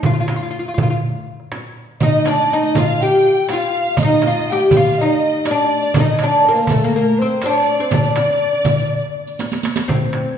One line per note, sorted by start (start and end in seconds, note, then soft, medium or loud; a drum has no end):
0.03 0.12 F4 medium
0.03 darbuka dum medium
0.03 frame drum medium
0.13 0.19 F4 medium
0.20 0.27 F4 medium
0.28 0.35 F4 medium
0.28 darbuka tek medium
0.28 frame drum medium
0.36 0.42 F4 medium
0.43 0.49 F4 soft
0.51 0.57 F4 medium
0.51 darbuka ka soft
0.59 0.65 F4 soft
0.66 0.73 F4 medium
0.66 darbuka ka soft
0.74 0.80 F4 soft
0.74 frame drum medium
0.74 darbuka dum medium
0.83 0.88 F4 medium
0.90 0.95 F4 medium
0.90 darbuka ka soft
1.15 darbuka ka soft
1.40 darbuka ka soft
1.52 darbuka tek medium
1.52 frame drum medium
2.00 2.27 D#4 medium
2.00 2.47 D#5 medium
2.00 2.24 D#5 medium
2.00 riq medium
2.00 darbuka dum medium
2.00 frame drum medium
2.26 2.52 D4 medium
2.26 2.51 D5 medium
2.26 riq soft
2.26 darbuka tek medium
2.26 frame drum medium
2.51 2.75 D#4 medium
2.51 2.75 D#5 medium
2.51 3.02 D#5 medium
2.51 darbuka ka soft
2.62 riq soft
2.62 darbuka ka soft
2.75 3.02 F4 medium
2.75 3.01 F5 medium
2.75 riq medium
2.75 darbuka dum medium
2.75 frame drum medium
2.88 riq soft
3.01 3.52 G4 medium
3.01 3.52 G5 medium
3.01 3.50 G5 medium
3.37 darbuka ka soft
3.49 4.01 F5 medium
3.49 3.96 F5 medium
3.49 riq soft
3.49 darbuka tek medium
3.49 frame drum medium
3.53 4.02 F4 medium
3.86 riq soft
3.97 4.23 D#5 medium
3.97 4.49 D#5 medium
3.97 riq medium
3.97 darbuka dum medium
3.97 frame drum medium
4.03 4.26 D#4 medium
4.22 4.49 F5 medium
4.22 darbuka tek medium
4.22 frame drum medium
4.27 4.50 F4 medium
4.47 4.72 G5 medium
4.47 4.67 G5 medium
4.47 darbuka ka soft
4.52 4.75 G4 medium
4.59 riq soft
4.68 4.73 G5 medium
4.68 riq soft
4.68 darbuka dum medium
4.68 frame drum medium
4.73 5.00 F4 medium
4.73 4.99 F5 medium
4.73 4.98 F5 medium
4.85 riq soft
4.98 5.50 D#4 medium
4.98 5.06 D#5 medium
4.98 5.47 D#5 medium
5.05 5.14 D5 medium
5.12 5.48 D#5 medium
5.33 darbuka ka soft
5.45 5.95 D5 medium
5.45 5.98 D5 medium
5.45 riq soft
5.45 darbuka tek medium
5.45 frame drum medium
5.51 5.94 D4 medium
5.82 riq soft
5.94 6.20 D#5 medium
5.94 6.22 D#5 medium
5.94 riq soft
5.94 darbuka dum loud
5.94 frame drum medium
6.00 6.23 D#4 medium
6.19 6.48 D5 medium
6.19 6.43 D5 medium
6.19 riq soft
6.19 darbuka tek medium
6.19 frame drum medium
6.23 6.47 D4 medium
6.43 6.69 A#4 medium
6.43 6.81 A#4 medium
6.43 darbuka ka soft
6.49 6.71 A#3 medium
6.55 riq soft
6.55 darbuka ka soft
6.67 6.83 A3 medium
6.67 6.93 A4 medium
6.67 riq soft
6.67 darbuka dum medium
6.67 frame drum medium
6.81 6.95 A#3 medium
6.81 6.93 A#4 medium
6.81 riq soft
6.93 7.20 A#3 medium
6.93 7.18 A#4 medium
6.93 7.20 A#4 medium
7.18 7.43 C5 medium
7.18 7.46 C5 medium
7.22 7.45 C4 medium
7.31 darbuka ka soft
7.42 7.80 D4 medium
7.42 7.90 D5 medium
7.42 7.83 D5 medium
7.42 riq soft
7.42 darbuka tek medium
7.42 frame drum medium
7.79 7.93 C4 medium
7.79 7.96 C5 medium
7.79 riq soft
7.91 9.36 D4 medium
7.91 9.35 D5 medium
7.91 9.41 D5 medium
7.91 riq medium
7.91 darbuka dum medium
7.91 frame drum medium
8.03 riq soft
8.15 riq soft
8.15 darbuka tek medium
8.15 frame drum medium
8.40 darbuka ka soft
8.52 darbuka ka soft
8.65 riq medium
8.65 darbuka dum medium
8.65 frame drum medium
8.78 riq soft
8.78 darbuka ka soft
9.04 darbuka ka soft
9.27 riq soft
9.27 darbuka ka soft
9.39 riq medium
9.39 darbuka tek medium
9.39 frame drum medium
9.52 riq medium
9.52 darbuka ka medium
9.63 riq medium
9.63 darbuka tek medium
9.76 riq medium
9.76 darbuka ka medium
9.88 10.36 C4 medium
9.88 10.38 C5 medium
9.88 darbuka dum medium
9.88 frame drum medium
10.01 darbuka ka soft
10.13 darbuka tek medium
10.13 frame drum medium